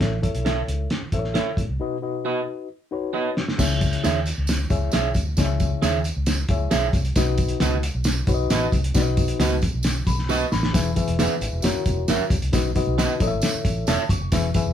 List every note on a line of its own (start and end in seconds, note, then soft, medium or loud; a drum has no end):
0.00 0.28 A1 medium
0.00 0.64 A2 medium
0.00 0.17 E4 medium
0.00 0.17 A4 medium
0.00 0.17 C#5 medium
0.00 0.17 E5 medium
0.00 kick loud
0.00 snare loud
0.00 closed hi-hat medium
0.22 0.88 E4 medium
0.22 0.88 A4 medium
0.22 0.88 C#5 medium
0.22 0.88 E5 medium
0.22 kick medium
0.22 closed hi-hat medium
0.35 0.62 B1 medium
0.35 closed hi-hat medium
0.45 0.60 A4 medium
0.45 0.60 C#5 medium
0.45 0.60 E5 medium
0.45 snare loud
0.45 closed hi-hat medium
0.68 0.86 C#2 medium
0.68 closed hi-hat medium
0.90 snare loud
0.90 closed hi-hat medium
1.02 muted fingered electric bass stroke soft
1.12 1.39 A1 medium
1.12 1.61 E4 medium
1.12 1.62 A4 medium
1.12 1.19 C5 medium
1.12 1.62 E5 medium
1.12 kick medium
1.12 closed hi-hat medium
1.19 1.65 C#5 medium
1.25 snare soft
1.34 1.49 A4 medium
1.34 1.50 C#5 medium
1.34 1.50 E5 medium
1.34 snare loud
1.34 closed hi-hat medium
1.57 1.66 A2 medium
1.57 kick medium
1.57 closed hi-hat medium
1.69 1.78 C2 medium
1.80 2.43 B2 medium
1.80 1.96 D#4 medium
1.80 1.96 F#4 medium
1.80 1.97 B4 medium
1.80 1.97 D#5 medium
2.01 2.67 D#4 medium
2.01 2.67 F#4 medium
2.01 2.68 B4 medium
2.01 2.68 D#5 medium
2.25 2.39 F#4 medium
2.25 2.40 B4 medium
2.25 2.40 D#5 medium
2.91 3.40 D#4 medium
2.91 3.41 F#4 medium
2.91 3.41 B4 medium
2.91 3.41 C#5 medium
3.13 3.28 F#4 medium
3.13 3.29 B4 medium
3.13 3.29 D#5 medium
3.37 snare medium
3.48 snare medium
3.58 3.95 C#2 loud
3.58 4.22 C#3 medium
3.58 4.24 E4 medium
3.58 4.24 G#4 medium
3.58 4.24 C#5 medium
3.58 4.24 E5 medium
3.58 kick loud
3.58 snare loud
3.58 crash medium
3.58 tambourine loud
3.81 kick medium
3.81 closed hi-hat medium
3.81 tambourine medium
3.93 closed hi-hat medium
4.04 4.31 D#2 loud
4.04 4.18 G#4 medium
4.04 4.19 C#5 medium
4.04 4.19 E5 medium
4.04 snare loud
4.04 closed hi-hat medium
4.04 tambourine medium
4.26 closed hi-hat medium
4.26 tambourine medium
4.38 4.64 C#2 loud
4.47 snare loud
4.47 closed hi-hat medium
4.47 tambourine loud
4.70 4.88 C#2 medium
4.70 5.19 E4 medium
4.70 5.19 G#4 medium
4.70 5.19 C#5 medium
4.70 5.20 E5 medium
4.70 kick medium
4.70 closed hi-hat medium
4.70 tambourine medium
4.92 5.12 B1 medium
4.92 5.08 G#4 medium
4.92 5.08 C#5 medium
4.92 5.08 E5 loud
4.92 snare loud
4.92 closed hi-hat medium
4.92 tambourine medium
5.14 5.33 D2 medium
5.14 kick medium
5.14 closed hi-hat medium
5.14 tambourine medium
5.37 5.74 C#2 loud
5.37 6.01 C#3 medium
5.37 6.02 E4 medium
5.37 6.03 G#4 medium
5.37 6.03 C#5 medium
5.37 5.44 D#5 medium
5.37 kick loud
5.37 snare loud
5.37 closed hi-hat medium
5.37 tambourine loud
5.44 6.06 E5 medium
5.60 kick medium
5.60 closed hi-hat medium
5.60 tambourine medium
5.82 6.10 D#2 medium
5.82 5.97 G#4 medium
5.82 5.97 C#5 medium
5.82 5.98 E5 medium
5.82 snare loud
5.82 closed hi-hat medium
5.82 tambourine medium
6.04 closed hi-hat medium
6.04 tambourine medium
6.17 6.43 C#2 medium
6.26 snare loud
6.26 closed hi-hat medium
6.26 tambourine medium
6.49 6.67 C#2 medium
6.49 6.98 E4 medium
6.49 6.98 G#4 medium
6.49 6.99 C#5 medium
6.49 6.99 E5 medium
6.49 kick medium
6.49 closed hi-hat medium
6.49 tambourine medium
6.71 6.90 B1 medium
6.71 6.86 G#4 medium
6.71 6.86 C#5 medium
6.71 6.87 E5 loud
6.71 snare loud
6.71 closed hi-hat loud
6.71 tambourine medium
6.93 7.11 C2 medium
6.93 kick medium
6.93 closed hi-hat medium
6.93 tambourine medium
7.05 closed hi-hat soft
7.16 7.52 B1 medium
7.16 7.80 B2 medium
7.16 7.81 D#4 medium
7.16 7.82 F#4 medium
7.16 7.82 B4 medium
7.16 7.82 D#5 medium
7.16 kick loud
7.16 snare loud
7.16 closed hi-hat medium
7.16 tambourine loud
7.38 kick medium
7.38 closed hi-hat medium
7.38 tambourine medium
7.49 closed hi-hat medium
7.60 7.88 C#2 medium
7.60 7.76 F#4 medium
7.60 7.76 B4 medium
7.60 7.76 D#5 medium
7.60 snare loud
7.60 closed hi-hat medium
7.60 tambourine medium
7.83 closed hi-hat medium
7.83 tambourine medium
7.95 8.22 B1 loud
8.04 snare loud
8.04 closed hi-hat medium
8.04 tambourine loud
8.27 8.46 B1 medium
8.27 8.76 D#4 medium
8.27 8.77 F#4 medium
8.27 8.77 B4 medium
8.27 8.34 C#5 medium
8.27 kick medium
8.27 closed hi-hat medium
8.27 tambourine medium
8.34 8.80 D#5 medium
8.50 8.68 A1 medium
8.50 8.65 F#4 medium
8.50 8.66 B4 medium
8.50 8.66 D#5 loud
8.50 snare loud
8.50 closed hi-hat loud
8.50 tambourine medium
8.72 8.91 C2 medium
8.72 kick medium
8.72 closed hi-hat medium
8.72 tambourine medium
8.84 closed hi-hat medium
8.94 9.31 B1 loud
8.94 9.58 B2 medium
8.94 9.60 D#4 medium
8.94 9.60 F#4 medium
8.94 9.61 B4 medium
8.94 9.01 D5 medium
8.94 kick loud
8.94 snare loud
8.94 closed hi-hat medium
8.94 tambourine loud
9.02 9.64 D#5 medium
9.17 kick medium
9.17 closed hi-hat medium
9.17 tambourine medium
9.28 closed hi-hat medium
9.39 9.67 C#2 loud
9.39 9.55 F#4 medium
9.39 9.55 B4 medium
9.39 9.55 D#5 medium
9.39 snare loud
9.39 closed hi-hat medium
9.39 tambourine loud
9.62 kick loud
9.62 closed hi-hat medium
9.62 tambourine medium
9.74 10.01 B1 medium
9.83 snare loud
9.83 closed hi-hat medium
9.83 tambourine loud
10.07 10.43 B1 medium
10.07 10.28 B5 medium
10.07 kick medium
10.07 closed hi-hat medium
10.07 tambourine medium
10.19 snare soft
10.29 10.44 F#4 medium
10.29 10.44 B4 loud
10.29 10.45 D#5 loud
10.29 10.51 C#6 medium
10.29 snare medium
10.29 tambourine loud
10.52 10.70 A1 loud
10.52 10.95 B5 medium
10.52 snare medium
10.52 tambourine medium
10.63 snare medium
10.73 10.92 E1 medium
10.73 11.37 E3 medium
10.73 10.90 E4 medium
10.73 10.90 G#4 medium
10.73 10.91 B4 medium
10.73 10.91 E5 medium
10.73 kick loud
10.73 snare loud
10.73 closed hi-hat medium
10.73 tambourine loud
10.95 11.61 E4 medium
10.95 11.62 G#4 medium
10.95 11.62 B4 medium
10.95 11.62 E5 medium
10.95 kick medium
10.95 closed hi-hat medium
10.95 tambourine medium
11.08 11.26 E1 medium
11.08 closed hi-hat medium
11.19 11.34 G#4 medium
11.19 11.34 B4 medium
11.19 11.34 E5 medium
11.19 snare loud
11.19 closed hi-hat medium
11.19 tambourine loud
11.41 11.50 G#1 loud
11.41 closed hi-hat medium
11.41 tambourine medium
11.53 11.62 E1 medium
11.62 11.73 F#1 loud
11.62 12.35 E4 medium
11.62 12.35 F#4 medium
11.62 12.35 A#4 medium
11.62 12.36 C#5 medium
11.62 snare loud
11.62 closed hi-hat medium
11.62 tambourine loud
11.75 muted fingered electric bass stroke soft
11.86 12.04 E1 medium
11.86 kick medium
11.86 closed hi-hat medium
11.86 tambourine medium
12.08 12.17 F#1 medium
12.08 12.23 F#4 medium
12.08 12.24 A#4 loud
12.08 12.24 E5 medium
12.08 snare loud
12.08 closed hi-hat medium
12.08 tambourine medium
12.30 12.39 C#2 medium
12.30 kick loud
12.30 closed hi-hat medium
12.30 tambourine medium
12.42 12.51 C2 medium
12.42 closed hi-hat medium
12.52 12.71 B1 loud
12.52 13.16 B2 medium
12.52 12.69 D#4 medium
12.52 12.70 F#4 medium
12.52 12.70 B4 medium
12.52 12.70 D#5 medium
12.52 kick loud
12.52 snare loud
12.52 closed hi-hat medium
12.52 tambourine loud
12.75 13.20 D#4 medium
12.75 13.21 F#4 medium
12.75 13.21 B4 medium
12.75 13.21 D#5 medium
12.75 kick medium
12.75 closed hi-hat medium
12.75 tambourine medium
12.87 13.05 B1 loud
12.98 13.13 F#4 medium
12.98 13.13 B4 medium
12.98 13.13 D#5 medium
12.98 snare loud
12.98 closed hi-hat medium
12.98 tambourine loud
13.20 13.29 A1 loud
13.20 13.84 A2 medium
13.20 13.92 E4 medium
13.20 13.92 A4 medium
13.20 13.93 C#5 medium
13.20 13.27 D#5 medium
13.20 kick loud
13.20 closed hi-hat medium
13.20 tambourine medium
13.27 13.96 E5 loud
13.32 13.41 G#1 medium
13.42 snare loud
13.42 closed hi-hat medium
13.42 tambourine loud
13.54 muted fingered electric bass stroke medium
13.65 13.83 A1 medium
13.65 kick medium
13.65 closed hi-hat medium
13.65 tambourine medium
13.87 13.97 E1 medium
13.87 14.02 A4 medium
13.87 14.03 C#5 loud
13.87 14.03 E5 loud
13.87 14.09 A5 medium
13.87 snare loud
13.87 closed hi-hat loud
13.87 tambourine medium
14.09 14.19 F#1 loud
14.09 14.53 C#6 medium
14.09 kick medium
14.09 closed hi-hat medium
14.09 tambourine medium
14.21 14.30 F1 loud
14.32 14.50 E1 loud
14.32 14.73 E3 medium
14.32 14.48 E4 medium
14.32 14.49 G#4 medium
14.32 14.49 B4 medium
14.32 14.49 E5 loud
14.32 kick loud
14.32 snare loud
14.32 closed hi-hat medium
14.32 tambourine loud
14.54 14.73 E4 medium
14.54 14.73 G#4 medium
14.54 14.73 B4 medium
14.54 14.73 E5 medium
14.54 kick medium
14.54 closed hi-hat medium
14.54 tambourine medium
14.66 14.73 E1 loud